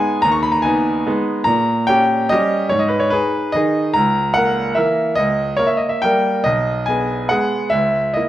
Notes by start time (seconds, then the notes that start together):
Already playing: G#3 B3 D#4 G#5
0.22 D#2 A#5
0.32 C#6
0.43 B5
0.52 A#5
0.62 B3 D#4 G#5
1.07 G#3 B3 D#4
1.44 A#2 A#5
1.87 C#4 G4 G5
2.29 G3 C#4 G4 D#5
2.69 G#2 C#5
2.79 D#5
2.88 B4
3.00 C#5
3.10 D#4 G#4 B4
3.52 D#3 D#4 G#4 D#5
3.93 C#2 A#5
4.33 A#3 A#4 F#5
4.75 E3 A#3 A#4 E5
5.15 C#2 D#5
5.57 A#3 A#4 C#5
5.67 E5
5.77 D#5
5.89 E5
6.02 G3 A#3 A#4 G5
6.44 B1 D#5
6.86 B3 G#4 G#5
7.29 G#3 B3 G#4 F#5
7.70 C#2 E5
8.14 A#3 E4 D#5